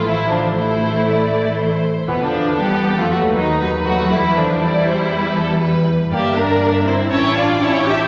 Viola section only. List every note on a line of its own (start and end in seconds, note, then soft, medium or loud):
0.04 0.12 A3 medium
0.29 0.55 F3 medium
0.55 1.80 A3 medium
2.08 2.13 E3 medium
2.21 2.59 F3 medium
2.60 2.97 B3 medium
2.97 3.10 A3 medium
3.11 3.35 A3 medium
3.36 3.44 F#3 medium
3.62 3.70 F#3 medium
3.87 4.11 A3 medium
4.12 4.37 G3 medium
4.37 4.61 F3 medium
4.64 5.85 G3 medium
6.12 6.35 A#3 medium
6.36 6.87 D4 medium
6.86 7.11 E4 medium
7.12 7.37 E4 medium
7.38 7.63 F4 medium
7.62 7.88 E4 medium
7.87 8.08 G4 medium